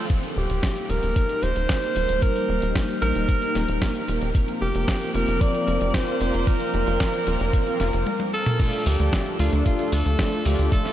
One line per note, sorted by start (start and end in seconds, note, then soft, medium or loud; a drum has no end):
0.10 4.31 G3 medium
0.10 8.03 A#3 medium
0.10 0.47 A#3 medium
0.10 4.31 D#4 medium
0.10 0.47 D#4 medium
0.10 kick loud
0.10 closed hi-hat medium
0.23 closed hi-hat soft
0.36 0.47 D#1 medium
0.36 0.91 G4 medium
0.50 0.60 D#1 medium
0.50 0.86 A#3 medium
0.50 0.86 D#4 medium
0.50 0.86 G4 medium
0.50 0.86 A#4 medium
0.50 closed hi-hat soft
0.63 kick loud
0.63 snare loud
0.63 closed hi-hat medium
0.76 closed hi-hat soft
0.89 1.00 D#1 medium
0.89 1.23 A#3 medium
0.89 1.23 D#4 medium
0.89 1.23 G4 medium
0.89 1.23 A#4 medium
0.89 1.44 A#4 loud
0.89 closed hi-hat medium
1.03 1.13 D#1 medium
1.03 closed hi-hat soft
1.16 kick loud
1.16 closed hi-hat medium
1.29 1.50 A#3 medium
1.29 1.50 D#4 medium
1.29 1.50 G4 medium
1.29 1.50 A#4 loud
1.29 closed hi-hat soft
1.43 1.53 D#1 loud
1.43 2.24 C5 loud
1.43 closed hi-hat medium
1.56 1.66 D#1 medium
1.56 closed hi-hat soft
1.69 1.90 A#3 medium
1.69 1.90 D#4 medium
1.69 1.90 G4 medium
1.69 1.90 A#4 medium
1.69 kick loud
1.69 snare loud
1.69 closed hi-hat loud
1.83 closed hi-hat soft
1.96 2.06 D#1 medium
1.96 2.17 A#3 medium
1.96 2.17 D#4 medium
1.96 2.17 G4 medium
1.96 2.17 A#4 loud
1.96 closed hi-hat medium
2.09 2.20 D#1 medium
2.09 closed hi-hat soft
2.22 2.59 A#3 medium
2.22 2.59 D#4 medium
2.22 2.75 A#4 loud
2.22 kick loud
2.22 closed hi-hat medium
2.36 closed hi-hat soft
2.49 2.59 D#1 medium
2.62 2.73 D#1 medium
2.62 2.99 A#3 medium
2.62 2.99 D#4 medium
2.62 2.99 G4 medium
2.62 2.99 A#4 medium
2.62 closed hi-hat soft
2.75 kick loud
2.75 snare loud
2.75 closed hi-hat medium
2.89 closed hi-hat soft
3.02 3.12 A#1 medium
3.02 3.36 A#3 medium
3.02 3.36 D#4 medium
3.02 4.04 A#4 loud
3.02 closed hi-hat medium
3.15 3.26 D#1 medium
3.15 closed hi-hat soft
3.29 kick loud
3.29 closed hi-hat medium
3.42 3.63 A#3 medium
3.42 3.63 D#4 medium
3.42 3.63 G4 medium
3.42 3.63 A#4 loud
3.42 closed hi-hat soft
3.55 3.66 D#1 medium
3.55 snare soft
3.55 closed hi-hat medium
3.68 3.79 D#1 medium
3.68 closed hi-hat soft
3.82 4.03 A#3 medium
3.82 4.03 D#4 medium
3.82 4.03 G4 medium
3.82 4.03 A#4 medium
3.82 kick loud
3.82 snare loud
3.82 closed hi-hat medium
3.95 closed hi-hat soft
4.08 4.19 D#1 medium
4.08 4.29 A#3 medium
4.08 4.29 D#4 medium
4.08 4.29 G4 medium
4.08 4.29 A#4 loud
4.08 closed hi-hat medium
4.21 4.32 D#1 medium
4.21 closed hi-hat soft
4.35 8.03 F3 medium
4.35 4.72 A#3 medium
4.35 4.72 C4 medium
4.35 8.03 C4 medium
4.35 4.72 F4 medium
4.35 4.72 A#4 medium
4.35 kick loud
4.35 closed hi-hat medium
4.48 closed hi-hat soft
4.61 4.72 F1 medium
4.61 5.11 G4 loud
4.75 4.85 F1 medium
4.75 5.11 A#3 medium
4.75 5.11 C4 medium
4.75 5.11 F4 medium
4.75 5.11 A#4 medium
4.75 closed hi-hat soft
4.88 kick loud
4.88 snare loud
4.88 closed hi-hat medium
5.01 closed hi-hat soft
5.14 5.25 F1 medium
5.14 5.48 A#3 medium
5.14 5.48 C4 medium
5.14 5.48 F4 medium
5.14 5.48 A#4 medium
5.14 5.42 A#4 loud
5.14 closed hi-hat medium
5.28 5.38 F1 medium
5.28 closed hi-hat soft
5.41 5.96 D5 loud
5.41 kick loud
5.41 closed hi-hat medium
5.54 5.75 A#3 medium
5.54 5.75 C4 medium
5.54 5.75 F4 medium
5.54 5.75 A#4 loud
5.54 closed hi-hat soft
5.67 5.78 F1 loud
5.67 closed hi-hat medium
5.81 5.91 F1 medium
5.81 closed hi-hat soft
5.94 6.15 A#3 medium
5.94 6.15 C4 medium
5.94 6.15 F4 medium
5.94 6.49 C5 loud
5.94 kick loud
5.94 snare loud
5.94 closed hi-hat medium
6.08 closed hi-hat soft
6.21 6.31 F1 medium
6.21 6.42 A#3 medium
6.21 6.42 C4 medium
6.21 6.42 F4 medium
6.21 6.42 A#4 loud
6.21 closed hi-hat medium
6.34 6.44 F1 medium
6.34 closed hi-hat soft
6.47 6.84 A#3 medium
6.47 6.84 C4 medium
6.47 6.84 F4 medium
6.47 8.07 A#4 loud
6.47 6.84 A#4 medium
6.47 kick loud
6.47 closed hi-hat medium
6.60 closed hi-hat soft
6.74 6.84 F1 medium
6.74 closed hi-hat soft
6.87 6.97 F1 medium
6.87 7.24 A#3 medium
6.87 7.24 C4 medium
6.87 7.24 F4 medium
6.87 7.24 A#4 medium
6.87 closed hi-hat soft
7.00 kick loud
7.00 snare loud
7.00 closed hi-hat medium
7.14 closed hi-hat soft
7.27 7.37 D#1 medium
7.27 7.60 A#3 medium
7.27 7.60 C4 medium
7.27 7.60 F4 medium
7.27 7.60 A#4 medium
7.27 closed hi-hat medium
7.40 7.51 F1 medium
7.40 closed hi-hat soft
7.53 kick loud
7.53 closed hi-hat medium
7.67 7.88 A#3 medium
7.67 7.88 C4 medium
7.67 7.88 F4 medium
7.67 7.88 A#4 loud
7.67 closed hi-hat soft
7.80 7.91 F1 loud
7.80 snare soft
7.80 closed hi-hat medium
7.93 8.04 F1 medium
7.93 closed hi-hat soft
8.06 high tom medium
8.20 high tom medium
8.33 8.88 A4 loud
8.46 mid tom medium
8.60 10.93 F3 medium
8.60 10.93 A3 medium
8.60 8.96 A3 medium
8.60 10.70 D4 medium
8.60 8.96 D4 medium
8.60 8.96 F4 medium
8.60 8.96 A4 medium
8.60 kick loud
8.60 closed hi-hat loud
8.60 crash loud
8.60 tambourine soft
8.73 closed hi-hat soft
8.73 tambourine soft
8.86 8.97 D2 loud
8.86 9.39 G4 medium
8.86 open hi-hat loud
8.86 tambourine medium
9.00 9.10 D2 medium
9.00 9.36 A3 medium
9.00 9.36 D4 medium
9.00 9.36 F4 medium
9.00 9.36 A4 medium
9.00 closed hi-hat soft
9.00 tambourine soft
9.13 kick loud
9.13 snare loud
9.13 closed hi-hat loud
9.13 tambourine soft
9.26 closed hi-hat soft
9.26 tambourine soft
9.39 9.50 D2 medium
9.39 9.73 A3 medium
9.39 9.73 D4 medium
9.39 9.73 F4 medium
9.39 9.51 F4 medium
9.39 9.73 A4 medium
9.39 open hi-hat loud
9.39 tambourine medium
9.53 9.63 D2 medium
9.53 closed hi-hat soft
9.53 tambourine soft
9.66 9.94 F4 medium
9.66 kick loud
9.66 closed hi-hat loud
9.66 tambourine soft
9.79 10.00 A3 loud
9.79 10.00 D4 medium
9.79 10.00 F4 medium
9.79 10.00 A4 loud
9.79 closed hi-hat soft
9.79 tambourine soft
9.92 10.03 D2 medium
9.92 10.47 A4 loud
9.92 open hi-hat loud
9.92 tambourine medium
10.06 10.16 D2 medium
10.06 closed hi-hat soft
10.06 tambourine soft
10.19 10.40 A3 medium
10.19 10.40 D4 medium
10.19 10.40 F4 medium
10.19 10.40 A4 medium
10.19 kick loud
10.19 snare loud
10.19 closed hi-hat loud
10.19 tambourine soft
10.32 closed hi-hat soft
10.32 tambourine soft
10.46 10.56 D2 medium
10.46 10.66 A3 medium
10.46 10.66 D4 medium
10.46 10.66 F4 medium
10.46 10.72 G4 medium
10.46 10.66 A4 loud
10.46 open hi-hat loud
10.46 tambourine medium
10.59 10.69 D2 medium
10.59 tambourine soft
10.72 10.93 A3 medium
10.72 10.93 C4 medium
10.72 10.93 D4 medium
10.72 10.93 F4 medium
10.72 10.93 A4 medium
10.72 10.93 A4 loud
10.72 kick loud
10.72 closed hi-hat medium
10.72 tambourine soft
10.85 snare soft
10.85 closed hi-hat soft
10.85 tambourine soft